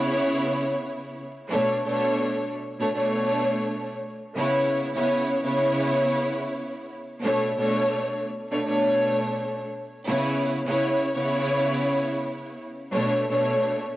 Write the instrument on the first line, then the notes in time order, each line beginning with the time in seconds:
string section
Already playing: C#3 B3 E4 C#5
1.50 B2 A3 D4 C#5
1.86 B2 A3 D4 C#5
2.79 B2 A3 D4 C#5
2.93 B2 A3 D4 C#5
4.35 C#3 B3 E4 C#5
4.94 C#3 B3 E4 C#5
5.43 C#3 B3 E4 C#5
7.22 B2 A3 D4 C#5
7.57 B2 A3 D4 C#5
8.51 B2 A3 D4 C#5
8.64 B2 A3 D4 C#5
10.06 C#3 B3 E4 C#5
10.65 C#3 B3 E4 C#5
11.15 C#3 B3 E4 C#5
12.93 B2 A3 D4 C#5
13.29 B2 A3 D4 C#5